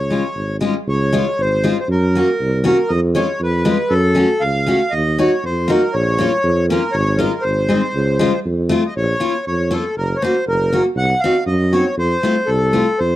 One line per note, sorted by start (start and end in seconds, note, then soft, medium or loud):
0.00 0.19 C#2 medium
0.00 0.57 C#5 medium
0.10 0.23 G#3 medium
0.10 0.23 C#4 soft
0.10 0.23 F4 soft
0.35 0.69 G#1 medium
0.61 0.73 G#3 medium
0.61 0.74 C#4 medium
0.61 0.74 F4 medium
0.87 1.21 C#2 medium
0.87 1.41 C#5 medium
1.13 1.25 G#3 medium
1.13 1.25 C#4 medium
1.13 1.25 F4 medium
1.38 1.72 G#1 medium
1.38 1.78 C5 loud
1.64 1.76 G#3 medium
1.64 1.76 C#4 medium
1.64 1.76 F4 medium
1.80 1.88 C5 medium
1.88 2.21 F#2 loud
1.88 2.65 A#4 medium
2.15 2.27 A#3 medium
2.15 2.27 C#4 medium
2.15 2.27 F#4 medium
2.40 2.73 C2 medium
2.64 2.76 A#3 medium
2.64 2.76 C#4 medium
2.64 2.76 F#4 medium
2.64 2.91 A#4 medium
2.88 3.23 F2 loud
2.88 3.00 D#5 loud
3.15 3.26 G#3 medium
3.15 3.27 C#4 medium
3.15 3.27 F4 medium
3.15 3.41 C#5 medium
3.40 3.73 F2 medium
3.40 3.94 B4 medium
3.65 3.77 G#3 medium
3.65 3.77 C#4 medium
3.65 3.77 F4 medium
3.90 4.24 F#2 loud
3.90 4.43 A4 loud
4.15 4.27 A3 medium
4.15 4.27 C#4 medium
4.15 4.28 F#4 medium
4.41 4.75 C#2 medium
4.41 4.94 F5 loud
4.66 4.78 A3 medium
4.66 4.79 C#4 soft
4.66 4.79 F#4 medium
4.90 5.26 D#2 medium
4.90 5.19 D#5 loud
5.18 5.30 A#3 medium
5.18 5.30 D#4 medium
5.18 5.30 F#4 medium
5.18 5.44 C#5 medium
5.43 5.76 F2 medium
5.43 5.71 C5 medium
5.68 5.80 A#3 medium
5.68 5.80 D#4 medium
5.68 5.81 F#4 medium
5.68 5.95 A#4 medium
5.93 6.27 A#1 medium
5.93 6.66 C#5 loud
6.18 6.30 A#3 medium
6.18 6.31 C#4 medium
6.18 6.31 F4 medium
6.44 6.77 F2 loud
6.70 6.82 A#3 medium
6.70 6.81 C#4 medium
6.70 6.82 F4 medium
6.70 6.96 A#4 medium
6.92 7.27 G#1 loud
6.92 7.20 C#5 loud
7.17 7.31 G#3 medium
7.17 7.30 C#4 medium
7.17 7.31 F4 medium
7.17 7.44 A#4 medium
7.41 7.77 G#1 medium
7.41 8.40 C5 medium
7.69 7.81 G#3 medium
7.69 7.81 C4 medium
7.69 7.81 D#4 medium
7.95 8.27 C#2 medium
8.19 8.31 G#3 medium
8.19 8.31 C#4 medium
8.19 8.32 F4 medium
8.45 8.78 F2 medium
8.69 8.82 A3 medium
8.69 8.82 C4 medium
8.69 8.83 F4 medium
8.85 8.94 D#5 medium
8.96 9.13 A#1 medium
8.96 9.45 C#5 loud
9.20 9.32 A#3 medium
9.20 9.32 C#4 soft
9.20 9.33 F4 medium
9.47 9.80 F2 medium
9.47 9.73 C#5 medium
9.71 9.83 A#3 medium
9.71 9.83 C#4 soft
9.71 9.83 F4 medium
9.71 9.95 A4 medium
9.97 10.13 F#1 medium
9.97 10.17 A#4 loud
10.16 10.23 C#5 medium
10.21 10.33 A#3 medium
10.21 10.34 C#4 medium
10.21 10.35 F#4 medium
10.21 10.45 C5 medium
10.47 10.79 F#1 medium
10.47 10.83 A#4 loud
10.73 10.84 A#3 medium
10.73 10.84 C#4 soft
10.73 10.84 F#4 medium
10.95 11.13 C2 loud
10.95 11.21 F#5 loud
11.20 11.34 C4 medium
11.20 11.44 F5 loud
11.24 11.35 D#4 medium
11.24 11.35 F#4 medium
11.46 11.80 F#2 loud
11.46 11.73 D#5 medium
11.72 11.84 C4 medium
11.72 11.84 D#4 soft
11.72 11.84 F#4 medium
11.72 11.95 C#5 medium
11.97 12.14 F2 medium
11.97 12.50 C5 loud
12.23 12.34 A3 medium
12.23 12.35 C4 soft
12.23 12.35 F4 medium
12.46 12.81 C2 medium
12.46 12.99 A4 medium
12.73 12.85 A3 medium
12.73 12.85 C4 soft
12.73 12.85 F4 medium
12.99 13.16 F2 medium
12.99 13.16 C5 medium